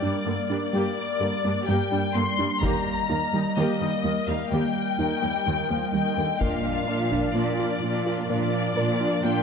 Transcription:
Already playing: G3 A#3 A#4 D5
0.02 G2 G3 D4
0.26 G2 D3 A#3
0.49 G2 G3 D4
0.73 G2 G3 A#3 G4 D5
1.21 G2 D3 A#3 G4
1.44 G2 G3 A#3 D4
1.68 G2 G3 A#3 G4 G5
1.92 G2 G3 D4
2.14 G2 D3 A#3 C6
2.39 G2 G3 D4
2.62 D#2 D#3 G3 A#3 G4 A#4 D#5 A#5, taiko
3.10 D#2 D#3 A#3 D#4
3.33 D#2 G3 D#4
3.56 D#2 D#3 A#3 G4 D#5
3.81 D#2 G3 A#3 D#4
4.04 D#2 D#3 G3 A#3
4.28 D#2 G3 A#3 D#4 F5
4.51 D#2 D#3 A#3 G4 G5
4.99 D#2 D#3 D#4
5.22 D#2 G3
5.46 D#2 D#3
5.70 D#2 F3 A#3
5.93 D#2 D#3 G3 G5
6.17 D#2 D3 A#3
6.40 A#2 F3 A#3 D4 F4 A#4 D5 F5, taiko
6.65 D4 F4
6.88 A#2 D4 F4 A#4
7.12 D4 F4, taiko
7.34 A#2 A#3 D4 F4 D5
7.59 D4 F4
7.82 A#2 D4 F4
8.06 D4 F4
8.30 A#2 A#3 D4 F4 D5
8.53 D4 F4
8.77 A#2 D4 F4 A#4
9.00 D4 F4
9.24 A#2 A#3 D4 F4 G5

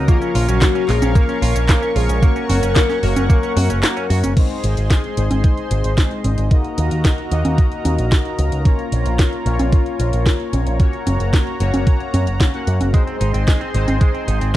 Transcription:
Already playing: A#4
0.08 C#3 A#3 C#4 F4 A#4 C#5 F5 C#6, kick, closed hi-hat, cabasa
0.22 C#4, closed hi-hat, cabasa
0.35 A#1 F4, open hi-hat
0.48 A#1 C#4 F#4, closed hi-hat, cabasa
0.62 A#3, kick, snare, clap, closed hi-hat, cabasa
0.75 C#4, closed hi-hat, cabasa
0.89 A#1 F3 A#3 C#4 F4 G#4 A#4, clap, open hi-hat
1.02 A#1 C#4, closed hi-hat, high conga, cabasa
1.15 A#3 A#4, kick, closed hi-hat, cabasa
1.29 C#4, closed hi-hat, cabasa
1.42 A#1 F4, open hi-hat
1.56 A#1 C#4 A#4, closed hi-hat, cabasa
1.69 A#3, kick, snare, clap, closed hi-hat, cabasa
1.82 C#4, closed hi-hat, cabasa
1.96 A#1 F4 G#4, open hi-hat
2.09 A#1 C#4, closed hi-hat, cabasa
2.22 F#3 A#3 C#4 A#4 F#5, kick, closed hi-hat, cabasa
2.36 C#4, closed hi-hat, cabasa
2.49 F#1 F#4, open hi-hat, high conga
2.63 F#1 C#4, closed hi-hat, cabasa
2.76 A#3, kick, snare, clap, closed hi-hat, cabasa
2.90 C#4, snare, closed hi-hat, cabasa
3.03 F#1 F#3 A#3 C#4 F#4 A#4, open hi-hat
3.16 F#1 C#4, closed hi-hat, high conga, cabasa
3.30 A#3, kick, closed hi-hat, cabasa
3.43 C#4, closed hi-hat, cabasa
3.56 F#2 F#4, open hi-hat, high conga
3.70 F#1 C#4, closed hi-hat, cabasa
3.83 A#3, snare, clap, closed hi-hat, cabasa
3.97 C#4, closed hi-hat, cabasa
4.10 F#2 F#4, open hi-hat
4.23 F#1 C#4, closed hi-hat, high conga, cabasa
4.37 G#3 C4 D#4 G#4 C5 D#5 C6, kick, closed hi-hat, crash
4.50 closed hi-hat
4.64 G#1, closed hi-hat
4.77 G#1, closed hi-hat
4.90 kick, snare, closed hi-hat
5.04 closed hi-hat
5.17 G#1 G#3 C4 D#4 C5, closed hi-hat
5.31 G#1, closed hi-hat, high conga
5.44 kick, closed hi-hat
5.57 closed hi-hat
5.71 G#1, closed hi-hat
5.84 G#1, closed hi-hat
5.97 kick, snare, closed hi-hat
6.11 closed hi-hat
6.24 G#1, closed hi-hat, high conga
6.38 G#1, closed hi-hat
6.51 A#3 D#4 F#4 A#4 D#5 A#5, kick, closed hi-hat
6.64 closed hi-hat
6.78 D#2, closed hi-hat
6.91 D#2, closed hi-hat
7.05 kick, snare, closed hi-hat
7.18 closed hi-hat
7.31 D#2 A#3 D#4 F#4 D#5, closed hi-hat
7.45 D#2, closed hi-hat, high conga
7.58 kick, closed hi-hat
7.72 closed hi-hat
7.85 D#2, closed hi-hat, high conga
7.98 A#1, closed hi-hat
8.12 kick, snare, closed hi-hat
8.25 closed hi-hat
8.39 C#2, closed hi-hat
8.52 C#2, closed hi-hat
8.65 A#3 C#4 F4 C#5, kick, closed hi-hat
8.79 closed hi-hat
8.92 A#1, closed hi-hat
9.06 A#1, closed hi-hat
9.19 kick, snare, closed hi-hat
9.33 closed hi-hat
9.46 A#1 A#3 C#4 F4 C#5, closed hi-hat
9.59 A#1, closed hi-hat, high conga
9.73 kick, closed hi-hat
9.86 closed hi-hat
9.99 A#1, closed hi-hat
10.13 A#1, closed hi-hat
10.26 kick, snare, closed hi-hat
10.40 closed hi-hat
10.53 A#1, closed hi-hat, high conga
10.66 A#1, closed hi-hat
10.80 A#3 C#4 F#4 C#5 A#5, kick, closed hi-hat
10.93 closed hi-hat
11.06 F#1, closed hi-hat, high conga
11.20 F#1, closed hi-hat
11.33 kick, snare, closed hi-hat
11.47 closed hi-hat
11.60 F#1 A#3 C#4 F#4 C#5, closed hi-hat
11.74 closed hi-hat, high conga
11.87 kick, closed hi-hat
12.00 closed hi-hat
12.14 F#2, closed hi-hat, high conga
12.27 F#1, closed hi-hat
12.40 kick, snare, closed hi-hat
12.54 A#3 C#4 F#4 F#5, closed hi-hat
12.67 F#2, closed hi-hat
12.81 F#1, closed hi-hat, high conga
12.94 G#3 C4 D#4 G#4 C5 D#5 C6, kick, closed hi-hat
13.07 C4, closed hi-hat
13.21 G#1 D#4, closed hi-hat
13.34 G#1 C4, closed hi-hat
13.47 G#3, kick, snare, closed hi-hat
13.61 C4, closed hi-hat
13.74 G#1 G#3 C4 D#4 C5, closed hi-hat
13.87 G#1 C4, closed hi-hat, high conga
14.01 G#3, kick, closed hi-hat
14.14 C4, closed hi-hat
14.28 G#1 D#4, closed hi-hat
14.41 G#1 C4, closed hi-hat

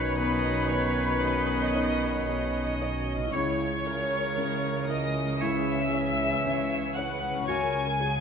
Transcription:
Already playing: B1 B2 D#3 C#4 D#4 F#4 B4 C#5 B5
0.17 B1 B2 B4 D#5 B5
0.70 C#4 D#4 C#5
1.22 B1 B2 D#5
1.75 C#4 D#4 C#5
2.27 B1 B2 D#5
2.81 C#4 D#4 C#5
3.16 C#3
3.20 C#4
3.25 E4
3.29 C#5 C#6
3.34 C#2 C#3 E3 C#4 E4
3.85 C#4 E4 A#4 C#5
4.36 C#2 C#3
4.89 C#4 E4 C#5 D#5 D#6
5.40 C#2 C#3 E4 G#4 C#5 E5 E6
5.93 C#4 E4 C#5
6.45 C#2 C#3 C#5
6.95 C#4 E4 B4 C#5 F#5 F#6
7.30 C#3
7.35 C#4
7.39 F#4
7.44 C#2 F#3 C#4 C#5 G#5
7.48 C#2 C#3 F#4 A#4 C#5 G#6
7.99 C#4 F#4 G#4 C#5

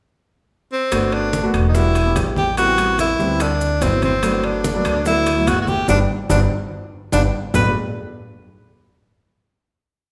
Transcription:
0.72 C4
0.92 G1 A3 B3 D4 F#4, high bongo, high conga, high timbale, maracas
1.12 D4, high bongo, high conga, high timbale
1.33 high bongo, high conga, low timbale, maracas
1.43 A3 B3 D4 F#4
1.54 E1, high conga, high timbale, maracas
1.68 D#4
1.74 G3 B3 D4 E4 F#4, high bongo, maracas
1.95 high conga, high timbale, maracas
2.05 G3 B3 D4 G4
2.16 A1, high bongo, low bongo, high conga, high timbale, low timbale, maracas
2.36 G4, high bongo, high conga, maracas
2.57 G3 B3 C4 E4 F#4, high bongo, high conga, high timbale, maracas
2.78 G3 B3 C4 E4, high conga, high timbale, maracas
2.98 E4, high bongo, high conga, high timbale, low timbale, maracas
3.19 D2 G3 B3 C4 E4, high bongo, high conga, maracas
3.40 D4, high bongo, high conga, high timbale, maracas
3.61 high conga, maracas
3.81 G1 F#3 B3 C4 E4, high bongo, low bongo, high conga, high timbale, low timbale, maracas
4.02 C4, high bongo, high conga, high timbale, maracas
4.23 F#3 A3 B3 D4, high bongo, high conga, high timbale, maracas
4.43 D4, high bongo, high conga, high timbale
4.64 high bongo, high conga, low timbale, maracas
4.74 F#3 A3 B3 D4
4.85 D2, high bongo, high conga, high timbale, maracas
5.05 F#3 A3 B3 D4 E4, high bongo, high conga, maracas
5.26 high conga, high timbale, maracas
5.36 F#3 A3 B3 E4
5.46 G1 F#4, high bongo, low bongo, high conga, high timbale, low timbale, maracas
5.61 F#4
5.67 G4, high bongo, high conga, maracas
5.88 G1 G3 B3 D4, low bongo, high conga, high timbale, maracas
6.29 G1 G3 B3 D4, low bongo, high conga, high timbale, maracas
7.12 G1 G3 B3 D4, low bongo, high conga, high timbale, maracas
7.54 G1 F#3 A3 B3 D4 B4, low bongo, low conga, low timbale, maracas

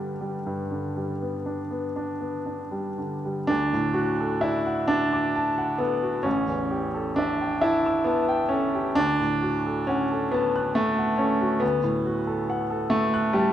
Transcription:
Already playing: G2 D3 G3 B3 D4 G4
0.21 G3
0.46 G2
0.71 D3
0.96 G3
1.22 B3
1.46 D4
1.71 B3
1.96 D4
2.20 B3
2.46 D4
2.71 G3
2.98 D3
3.25 G3
3.47 D2 D4
3.73 A2
3.94 F#4
4.20 A4
4.41 E4 D5
4.66 F#5
4.88 D4 A5
5.13 D6
5.36 A5
5.58 F#5
5.78 B3 A4
6.03 F#4
6.23 A1 C#4
6.48 E2
6.71 G4
6.95 A4
7.16 D4 E5
7.41 G5
7.61 E4 A5
7.86 E6
8.05 B3 A5
8.29 G5
8.49 C#4 A4
8.74 G4
8.95 D2 D4
9.20 A2
9.42 F#4
9.66 A4
9.87 C#4 F#5
10.11 A4
10.31 B3 A5
10.56 F#6
10.75 A3 A5
10.99 F#5
11.18 C#4 A4
11.41 F#4
11.60 D2 B3
11.84 A2
12.06 F#4
12.27 A4
12.50 F#5
12.70 A4
12.90 A3 A5
13.14 F#6
13.33 G3 A5

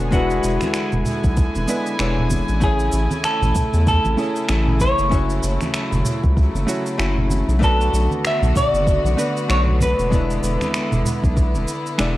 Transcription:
Already playing: D3 B3
0.00 E1
0.11 G#3 B3 D4 E4 F#4 G#5, kick, shaker
0.15 B4
0.30 shaker
0.43 E1, shaker
0.61 finger snap, high conga, shaker
0.74 finger snap, shaker
0.92 E1, low conga, shaker
1.05 low conga, shaker
1.24 B1, kick, shaker
1.37 kick, shaker
1.55 E1, high conga, shaker
1.68 G#3 B3 D4 E4 B4, shaker
1.86 shaker
1.99 E1 G#3 B3 D4 E4 C#5, finger snap, shaker
2.19 low conga
2.30 kick, high conga, shaker
2.49 A1, shaker
2.60 C#3 A3 C#4 E4 G#4 G#5, kick, shaker
2.65 C#5
2.80 shaker
2.93 A1, shaker
3.11 high conga, shaker
3.24 A4, finger snap, shaker
3.42 A1, low conga, shaker
3.56 kick, low conga, shaker
3.74 E2, shaker
3.87 A4, kick, shaker
4.05 A1, high conga, shaker
4.17 A3 C#4 E4 G#4 C#5, shaker
4.36 shaker
4.48 A1 A3 C#4 E4 E5 G#5, finger snap, shaker
4.68 low conga
4.80 C#5, kick, high conga, shaker
4.99 F#1, shaker
5.09 F#3 A3 C#4 E4 F#4, kick, shaker
5.14 C#5
5.30 shaker
5.43 F#1, shaker
5.60 finger snap, high conga, shaker
5.73 finger snap, shaker
5.92 F#1, low conga, shaker
6.05 low conga, shaker
6.24 C#2, kick, shaker
6.37 kick, shaker
6.54 F#1, high conga, shaker
6.67 A3 C#4 E4 F#4 C#5, shaker
6.86 shaker
6.98 F#1 A3 C#4 E4 F#4 E5, finger snap, shaker
7.18 low conga
7.30 high conga, shaker
7.48 B1, shaker
7.59 D3 A3 B3 D4 F#4, kick, shaker
7.63 A4 B4
7.81 shaker
7.93 B1, shaker
8.11 high conga, shaker
8.24 E5, finger snap, shaker
8.42 B1, low conga, shaker
8.56 D5, kick, low conga, shaker
8.73 F#1, shaker
8.87 kick, shaker
9.05 B1, high conga, shaker
9.17 A3 B3 D4 F#4 B4, shaker
9.37 shaker
9.48 B1 A3 B3 D4 F#4 C#5, finger snap, shaker
9.67 low conga
9.81 B4, kick, high conga, shaker
9.98 E1, shaker
10.10 G#3 B3 D4 E4, kick, shaker
10.15 B4
10.30 shaker
10.43 E1, shaker
10.61 finger snap, high conga, shaker
10.74 finger snap, shaker
10.92 E1, low conga, shaker
11.05 low conga, shaker
11.23 B1, kick, shaker
11.37 kick, shaker
11.55 E1, high conga, shaker
11.68 shaker
11.86 shaker
11.98 E1 G#3 B3 D4 E4 D5, finger snap, shaker

